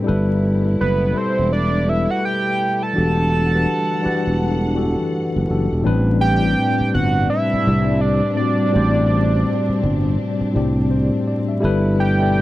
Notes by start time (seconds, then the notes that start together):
0.04 B2 G3 A3 E4 A4
0.08 G1 B4
0.62 G3 E4 A4
0.66 B4
0.81 F#1 B4
1.13 G3 E4 A4
1.17 C5 D5
1.39 E1
1.53 D5
1.85 G3 E4 A4 E5
1.89 B4
2.10 F#5
2.25 G5
2.83 A5
2.93 D3 E3 G3 D4 F#4 G4 F#5
2.97 E1 A4
3.51 E3 D4 F#4 G4
3.55 B4
4.01 E3 D4 F#4 G4
4.06 B4, muted fretless electric bass stroke
4.27 E1
4.74 E3 D4 F#4 G4
4.78 A4
5.36 F#1
5.47 F#1 E3 D4 F#4 G4
5.51 A4
5.72 E1
5.83 A2 C3 G3 C4 D4 B4
5.87 A1
6.21 G5
6.40 A2 G3 C4 D4
6.44 G4
6.81 muted fretless electric bass stroke
6.94 G1 F#5
7.30 E5
7.53 muted fretless electric bass stroke
7.63 A2 G3 C4 D4
7.67 C2 D5
8.01 D5
8.36 A2 G3 C4 D4 F#4 D5
8.72 A2 G3 C4 D4
8.76 A1 C5
9.69 muted fretless electric bass stroke
9.84 G1
10.41 muted fretless electric bass stroke
10.53 C2 A2 G3 C4 D4
10.57 G4
10.91 C5
11.27 D5
11.48 E5
11.60 G1 B2 G3 A3 E4 A4
11.65 B4
12.00 G5
12.18 G3 E4 A4
12.22 D5